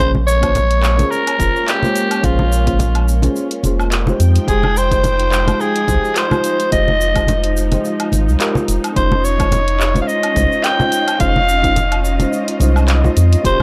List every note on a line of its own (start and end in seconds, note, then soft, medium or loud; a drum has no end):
0.00 1.04 A#1 loud
0.00 8.93 G#3 medium
0.00 0.16 A#3 medium
0.00 4.16 A#3 medium
0.00 0.16 C#4 medium
0.00 4.16 C#4 medium
0.00 0.16 F4 medium
0.00 0.16 G#4 medium
0.00 0.12 C5 loud
0.00 0.17 C5 medium
0.00 shaker soft
0.15 high conga medium
0.27 1.12 C#5 loud
0.27 shaker medium
0.41 0.51 A#3 medium
0.41 0.51 C#4 medium
0.41 0.52 F4 medium
0.41 0.52 G#4 medium
0.41 0.52 C5 medium
0.41 kick medium
0.41 closed hi-hat soft
0.41 low woodblock medium
0.41 shaker soft
0.55 closed hi-hat soft
0.55 high conga medium
0.55 low conga medium
0.55 shaker soft
0.71 closed hi-hat soft
0.83 clap medium
0.83 shaker medium
0.97 1.35 A#3 medium
0.97 1.36 C#4 medium
0.97 1.36 F4 medium
0.97 1.36 G#4 medium
0.97 1.37 C5 medium
0.97 closed hi-hat soft
0.97 high conga medium
0.97 shaker soft
1.10 1.70 A#4 medium
1.10 shaker soft
1.27 closed hi-hat medium
1.27 low woodblock medium
1.38 1.49 F1 medium
1.38 1.79 A#3 medium
1.38 1.79 C#4 medium
1.38 1.79 F4 medium
1.38 1.79 G#4 medium
1.38 1.80 C5 medium
1.38 kick loud
1.38 closed hi-hat soft
1.38 high conga medium
1.38 shaker medium
1.56 shaker soft
1.68 2.26 G4 medium
1.68 clap medium
1.68 closed hi-hat medium
1.68 shaker soft
1.82 2.21 G#3 medium
1.82 2.20 A#3 medium
1.82 2.20 C#4 medium
1.82 2.20 F4 medium
1.82 2.21 C5 medium
1.82 high conga medium
1.82 shaker soft
1.96 closed hi-hat soft
1.96 shaker medium
2.11 closed hi-hat soft
2.11 low woodblock medium
2.11 shaker soft
2.22 3.28 A#1 loud
2.22 2.40 A#3 medium
2.22 2.41 C#4 medium
2.22 2.41 F4 medium
2.22 3.08 F4 medium
2.22 2.41 G#4 medium
2.22 2.42 C5 loud
2.22 kick loud
2.22 closed hi-hat soft
2.22 shaker soft
2.39 high conga medium
2.52 shaker medium
2.66 2.75 A#3 medium
2.66 2.76 C#4 medium
2.66 2.76 F4 medium
2.66 2.76 G#4 medium
2.66 2.77 C5 medium
2.66 kick medium
2.66 closed hi-hat soft
2.66 shaker soft
2.79 closed hi-hat medium
2.79 high conga medium
2.79 low conga medium
2.79 shaker soft
2.95 closed hi-hat soft
2.95 low woodblock medium
3.08 shaker medium
3.22 3.60 A#3 medium
3.22 3.60 C#4 medium
3.22 3.61 F4 medium
3.22 3.61 G#4 medium
3.22 3.61 C5 medium
3.22 closed hi-hat soft
3.22 high conga medium
3.22 shaker soft
3.36 shaker soft
3.51 closed hi-hat soft
3.63 4.12 F1 loud
3.63 4.03 A#3 medium
3.63 4.03 C#4 medium
3.63 4.04 F4 medium
3.63 4.04 G#4 medium
3.63 4.04 C5 medium
3.63 closed hi-hat soft
3.63 high conga medium
3.63 shaker medium
3.80 low woodblock medium
3.80 shaker soft
3.92 clap medium
3.92 closed hi-hat medium
3.92 shaker soft
4.06 4.44 G#3 medium
4.06 4.45 D#4 medium
4.06 4.45 F4 medium
4.06 4.45 G4 medium
4.06 4.46 C5 medium
4.06 high conga medium
4.06 shaker soft
4.20 4.39 F2 medium
4.20 8.92 F3 medium
4.20 13.41 D#4 medium
4.20 6.42 G5 medium
4.20 closed hi-hat soft
4.20 shaker medium
4.36 closed hi-hat soft
4.36 shaker soft
4.47 5.53 F1 loud
4.47 4.64 G#3 medium
4.47 4.65 D#4 medium
4.47 4.65 F4 medium
4.47 4.65 G4 medium
4.47 4.79 G#4 medium
4.47 4.66 C5 medium
4.47 kick loud
4.47 closed hi-hat soft
4.47 shaker soft
4.63 high conga medium
4.63 low woodblock medium
4.77 5.62 C5 loud
4.77 shaker medium
4.90 5.00 G#3 medium
4.90 5.00 D#4 medium
4.90 5.01 F4 medium
4.90 5.01 G4 medium
4.90 5.01 C5 medium
4.90 kick medium
4.90 closed hi-hat soft
4.90 shaker soft
5.04 closed hi-hat soft
5.04 high conga medium
5.04 low conga medium
5.04 shaker soft
5.20 closed hi-hat soft
5.32 clap medium
5.32 shaker medium
5.46 5.84 G#3 medium
5.46 5.85 D#4 medium
5.46 5.85 F4 medium
5.46 5.85 G4 medium
5.46 5.86 C5 medium
5.46 closed hi-hat soft
5.46 high conga medium
5.46 low woodblock medium
5.46 shaker soft
5.61 6.19 G#4 medium
5.61 shaker soft
5.76 closed hi-hat soft
5.87 5.98 C2 medium
5.87 6.27 G#3 medium
5.87 6.27 D#4 medium
5.87 6.28 F4 medium
5.87 6.28 G4 medium
5.87 6.28 C5 medium
5.87 kick loud
5.87 closed hi-hat soft
5.87 high conga medium
5.87 shaker medium
6.05 shaker soft
6.16 6.72 C5 medium
6.16 clap medium
6.16 closed hi-hat medium
6.16 shaker soft
6.30 6.68 G#3 medium
6.30 6.69 D#4 medium
6.30 6.69 F4 medium
6.30 6.69 G4 medium
6.30 6.70 C5 medium
6.30 high conga loud
6.30 low woodblock medium
6.30 shaker soft
6.44 closed hi-hat soft
6.44 shaker medium
6.60 closed hi-hat soft
6.60 shaker soft
6.71 7.77 F1 loud
6.71 6.89 G#3 medium
6.71 6.89 D#4 medium
6.71 6.90 F4 medium
6.71 6.90 G4 medium
6.71 6.90 C5 medium
6.71 7.52 D#5 loud
6.71 kick loud
6.71 closed hi-hat medium
6.71 shaker soft
6.88 high conga medium
7.01 shaker medium
7.14 7.24 G#3 medium
7.14 7.24 D#4 medium
7.14 7.25 F4 medium
7.14 7.25 G4 medium
7.14 7.25 C5 medium
7.14 kick loud
7.14 closed hi-hat soft
7.14 low woodblock medium
7.14 shaker soft
7.27 closed hi-hat soft
7.27 high conga medium
7.27 low conga medium
7.27 shaker soft
7.44 closed hi-hat soft
7.57 shaker medium
7.71 8.09 G#3 medium
7.71 8.09 D#4 medium
7.71 8.09 F4 medium
7.71 8.10 G4 medium
7.71 8.10 C5 medium
7.71 closed hi-hat soft
7.71 high conga medium
7.71 shaker soft
7.85 shaker soft
8.00 closed hi-hat soft
8.00 low woodblock medium
8.12 8.30 G#1 medium
8.12 closed hi-hat soft
8.12 high conga medium
8.12 shaker medium
8.28 8.36 C2 loud
8.28 shaker soft
8.39 8.93 G#3 loud
8.39 8.93 D#4 medium
8.39 8.93 F4 medium
8.39 8.94 G4 medium
8.39 8.94 A#4 loud
8.39 clap medium
8.39 closed hi-hat medium
8.39 shaker soft
8.55 high conga loud
8.55 shaker soft
8.68 8.78 F1 medium
8.68 closed hi-hat soft
8.68 shaker medium
8.84 closed hi-hat soft
8.84 low woodblock medium
8.84 shaker soft
8.95 10.01 F1 loud
8.95 9.13 G#3 medium
8.95 9.13 C#4 medium
8.95 13.41 C#4 medium
8.95 9.13 D#4 medium
8.95 13.63 F4 medium
8.95 9.14 F4 medium
8.95 9.26 C5 medium
8.95 9.14 C5 medium
8.95 13.63 D#5 medium
8.95 kick loud
8.95 closed hi-hat medium
8.95 shaker soft
9.12 high conga medium
9.24 10.01 C#5 medium
9.24 shaker medium
9.38 9.48 G#3 medium
9.38 9.48 C#4 medium
9.38 9.48 D#4 medium
9.38 9.49 F4 medium
9.38 9.49 C5 medium
9.38 kick loud
9.38 closed hi-hat soft
9.38 low woodblock medium
9.38 shaker soft
9.51 closed hi-hat soft
9.51 high conga medium
9.51 low conga medium
9.51 shaker soft
9.68 closed hi-hat soft
9.80 clap medium
9.80 shaker medium
9.94 10.32 G#3 medium
9.94 10.33 C#4 medium
9.94 10.33 D#4 medium
9.94 10.33 F4 medium
9.94 10.34 C5 medium
9.94 closed hi-hat soft
9.94 high conga medium
9.94 shaker soft
10.02 10.09 F5 medium
10.07 10.65 D#5 loud
10.07 shaker soft
10.23 closed hi-hat medium
10.23 low woodblock medium
10.34 10.46 C2 loud
10.34 10.75 G#3 medium
10.34 10.75 C#4 medium
10.34 10.76 D#4 medium
10.34 10.76 F4 medium
10.34 10.76 C5 medium
10.34 kick medium
10.34 closed hi-hat soft
10.34 high conga medium
10.34 shaker medium
10.52 shaker soft
10.63 11.20 G5 loud
10.63 clap medium
10.63 closed hi-hat medium
10.63 shaker soft
10.79 11.17 G#3 medium
10.79 11.17 C#4 medium
10.79 11.18 D#4 medium
10.79 11.18 F4 medium
10.79 11.18 C5 medium
10.79 high conga medium
10.79 shaker soft
10.92 closed hi-hat soft
10.92 shaker medium
11.08 closed hi-hat soft
11.08 low woodblock medium
11.08 shaker soft
11.19 12.25 F1 loud
11.19 11.37 G#3 medium
11.19 11.37 C#4 medium
11.19 11.38 D#4 medium
11.19 11.38 F4 medium
11.19 11.38 C5 medium
11.19 12.28 F5 loud
11.19 kick loud
11.19 closed hi-hat medium
11.19 shaker soft
11.36 high conga medium
11.49 shaker medium
11.62 11.72 G#3 medium
11.62 11.72 C#4 medium
11.62 11.73 D#4 medium
11.62 11.73 F4 medium
11.62 11.73 C5 medium
11.62 kick medium
11.62 closed hi-hat soft
11.62 shaker soft
11.76 closed hi-hat medium
11.76 high conga medium
11.76 low conga medium
11.76 shaker soft
11.92 closed hi-hat soft
11.92 low woodblock medium
12.05 shaker medium
12.19 12.57 G#3 medium
12.19 12.57 C#4 medium
12.19 12.58 D#4 medium
12.19 12.58 F4 medium
12.19 12.58 C5 medium
12.19 closed hi-hat soft
12.19 high conga medium
12.19 shaker soft
12.33 shaker soft
12.48 closed hi-hat medium
12.60 13.09 C2 loud
12.60 13.00 G#3 medium
12.60 13.00 C#4 medium
12.60 13.01 D#4 medium
12.60 13.01 F4 medium
12.60 13.01 C5 medium
12.60 closed hi-hat soft
12.60 high conga medium
12.60 shaker medium
12.76 low woodblock medium
12.76 shaker soft
12.88 clap medium
12.88 closed hi-hat medium
12.88 shaker soft
13.03 13.41 G#3 medium
13.03 13.42 C#4 medium
13.03 13.42 D#4 medium
13.03 13.42 F4 medium
13.03 13.42 C5 medium
13.03 high conga medium
13.03 shaker soft
13.17 13.36 F2 medium
13.17 closed hi-hat soft
13.17 shaker medium
13.33 closed hi-hat soft
13.33 shaker soft
13.43 13.63 D#1 loud
13.43 13.63 C#3 medium
13.43 13.61 A#3 medium
13.43 13.62 C#4 medium
13.43 13.62 F4 medium
13.43 13.63 G4 medium
13.43 13.62 G4 medium
13.43 13.63 C5 medium
13.43 13.63 C5 loud
13.43 kick loud
13.43 closed hi-hat medium
13.43 shaker soft